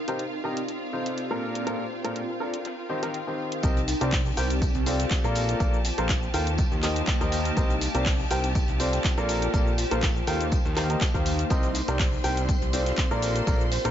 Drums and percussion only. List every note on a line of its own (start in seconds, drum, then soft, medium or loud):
0.08 closed hi-hat medium
0.19 closed hi-hat medium
0.19 open hi-hat medium
0.44 tambourine medium
0.57 closed hi-hat medium
0.68 closed hi-hat medium
0.68 tambourine medium
0.82 closed hi-hat soft
0.93 tambourine medium
1.06 snare soft
1.06 closed hi-hat medium
1.17 closed hi-hat soft
1.17 tambourine medium
1.30 closed hi-hat soft
1.42 tambourine medium
1.55 closed hi-hat medium
1.67 closed hi-hat medium
1.67 tambourine medium
1.92 tambourine medium
2.05 closed hi-hat medium
2.16 closed hi-hat medium
2.16 tambourine medium
2.40 tambourine medium
2.54 closed hi-hat medium
2.65 snare loud
2.65 closed hi-hat soft
2.65 open hi-hat medium
2.90 tambourine medium
3.03 snare loud
3.03 closed hi-hat medium
3.03 open hi-hat medium
3.14 closed hi-hat soft
3.28 tambourine medium
3.39 tambourine medium
3.51 closed hi-hat soft
3.51 closed hi-hat medium
3.63 kick loud
3.63 closed hi-hat medium
3.63 tambourine loud
3.63 cabasa soft
3.77 closed hi-hat soft
3.77 cabasa soft
3.88 open hi-hat loud
3.88 tambourine medium
3.88 cabasa medium
4.01 closed hi-hat medium
4.01 cabasa soft
4.12 kick loud
4.12 snare loud
4.12 clap loud
4.12 closed hi-hat medium
4.12 open hi-hat medium
4.12 cabasa soft
4.26 cabasa soft
4.37 open hi-hat medium
4.37 tambourine medium
4.37 cabasa medium
4.50 closed hi-hat medium
4.50 cabasa soft
4.62 kick loud
4.62 closed hi-hat medium
4.62 tambourine medium
4.62 cabasa soft
4.75 closed hi-hat soft
4.75 cabasa soft
4.86 open hi-hat loud
4.86 tambourine medium
4.86 cabasa medium
4.99 snare soft
4.99 closed hi-hat medium
4.99 cabasa soft
5.11 kick loud
5.11 snare loud
5.11 clap loud
5.11 closed hi-hat medium
5.11 tambourine medium
5.11 cabasa soft
5.24 closed hi-hat soft
5.24 cabasa soft
5.35 open hi-hat medium
5.35 tambourine medium
5.35 cabasa medium
5.49 closed hi-hat medium
5.49 cabasa soft
5.60 kick loud
5.60 closed hi-hat medium
5.60 tambourine medium
5.60 cabasa soft
5.74 cabasa soft
5.85 open hi-hat loud
5.85 tambourine medium
5.85 cabasa medium
5.98 closed hi-hat medium
5.98 cabasa soft
6.09 kick loud
6.09 snare loud
6.09 clap loud
6.09 closed hi-hat medium
6.09 tambourine medium
6.09 cabasa soft
6.23 cabasa soft
6.34 open hi-hat medium
6.34 tambourine medium
6.34 cabasa medium
6.47 closed hi-hat medium
6.47 cabasa soft
6.58 kick loud
6.58 closed hi-hat medium
6.58 tambourine medium
6.58 cabasa soft
6.72 cabasa soft
6.83 clap medium
6.83 open hi-hat loud
6.83 tambourine medium
6.83 cabasa medium
6.96 closed hi-hat medium
6.96 cabasa soft
7.07 kick loud
7.07 snare loud
7.07 clap loud
7.07 closed hi-hat medium
7.07 tambourine medium
7.07 cabasa soft
7.21 closed hi-hat soft
7.21 cabasa soft
7.32 open hi-hat loud
7.32 tambourine medium
7.32 cabasa medium
7.45 closed hi-hat soft
7.45 closed hi-hat medium
7.45 cabasa soft
7.56 kick loud
7.56 closed hi-hat medium
7.56 tambourine medium
7.56 cabasa soft
7.70 closed hi-hat soft
7.70 cabasa soft
7.81 open hi-hat loud
7.81 tambourine medium
7.81 cabasa medium
7.95 closed hi-hat medium
7.95 cabasa soft
8.06 kick loud
8.06 snare loud
8.06 clap loud
8.06 closed hi-hat medium
8.06 open hi-hat medium
8.06 cabasa soft
8.20 cabasa soft
8.31 open hi-hat loud
8.31 tambourine medium
8.31 cabasa medium
8.44 closed hi-hat medium
8.44 cabasa soft
8.55 kick loud
8.55 closed hi-hat medium
8.55 tambourine loud
8.55 cabasa soft
8.68 closed hi-hat soft
8.68 cabasa soft
8.80 open hi-hat loud
8.80 tambourine medium
8.80 cabasa medium
8.93 snare soft
8.93 closed hi-hat medium
8.93 cabasa soft
9.04 kick loud
9.04 snare loud
9.04 clap loud
9.04 closed hi-hat soft
9.04 tambourine medium
9.04 cabasa soft
9.17 closed hi-hat soft
9.17 cabasa soft
9.29 open hi-hat loud
9.29 tambourine medium
9.29 cabasa medium
9.42 closed hi-hat medium
9.42 cabasa soft
9.54 kick loud
9.54 closed hi-hat medium
9.54 tambourine medium
9.54 cabasa soft
9.67 cabasa soft
9.78 open hi-hat loud
9.78 tambourine medium
9.78 cabasa medium
9.91 closed hi-hat medium
9.91 cabasa soft
10.02 kick loud
10.02 snare loud
10.02 clap loud
10.02 closed hi-hat soft
10.02 tambourine medium
10.02 cabasa soft
10.16 cabasa soft
10.27 open hi-hat medium
10.27 tambourine medium
10.27 cabasa medium
10.41 closed hi-hat medium
10.41 cabasa soft
10.52 kick loud
10.52 closed hi-hat medium
10.52 tambourine medium
10.52 cabasa soft
10.65 cabasa soft
10.77 clap medium
10.77 open hi-hat loud
10.77 tambourine medium
10.77 cabasa medium
10.90 closed hi-hat medium
10.90 cabasa soft
11.01 kick loud
11.01 snare loud
11.01 clap loud
11.01 closed hi-hat medium
11.01 tambourine loud
11.01 cabasa soft
11.14 kick medium
11.14 closed hi-hat soft
11.14 cabasa soft
11.26 open hi-hat loud
11.26 tambourine medium
11.26 cabasa medium
11.39 closed hi-hat soft
11.39 closed hi-hat medium
11.39 cabasa soft
11.50 kick loud
11.50 closed hi-hat medium
11.50 tambourine loud
11.50 cabasa soft
11.63 closed hi-hat soft
11.63 cabasa soft
11.75 open hi-hat loud
11.75 tambourine medium
11.75 cabasa medium
11.88 closed hi-hat medium
11.88 cabasa soft
11.99 kick loud
11.99 snare loud
11.99 clap loud
11.99 closed hi-hat medium
11.99 open hi-hat medium
11.99 cabasa soft
12.13 cabasa soft
12.24 open hi-hat medium
12.24 tambourine medium
12.24 cabasa medium
12.37 closed hi-hat medium
12.37 cabasa soft
12.49 kick loud
12.49 closed hi-hat soft
12.49 tambourine loud
12.49 cabasa soft
12.62 closed hi-hat soft
12.62 cabasa soft
12.73 open hi-hat loud
12.73 tambourine medium
12.73 cabasa medium
12.86 snare soft
12.86 closed hi-hat medium
12.86 cabasa soft
12.97 kick loud
12.97 snare loud
12.97 clap loud
12.97 closed hi-hat soft
12.97 tambourine medium
12.97 cabasa soft
13.11 closed hi-hat soft
13.11 cabasa soft
13.22 open hi-hat loud
13.22 tambourine medium
13.22 cabasa medium
13.36 closed hi-hat medium
13.36 cabasa soft
13.47 kick loud
13.47 closed hi-hat medium
13.47 tambourine medium
13.47 cabasa soft
13.60 cabasa soft
13.72 open hi-hat loud
13.72 tambourine medium
13.72 cabasa medium
13.85 closed hi-hat medium
13.85 cabasa soft